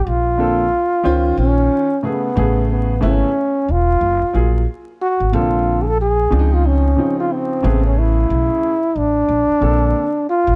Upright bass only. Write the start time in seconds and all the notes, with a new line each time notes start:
0.07 A#1
1.05 C#2
1.37 A#1
2.37 A1
3.02 G#1
3.69 E1
4.01 F#1
4.22 muted upright bass stroke
4.34 A#1
5.20 G#1
5.33 A#1
6.32 C#2
7.64 A1
8.30 B1
8.96 A1
9.29 A#1
9.49 muted upright bass stroke
9.62 A#1
10.47 A1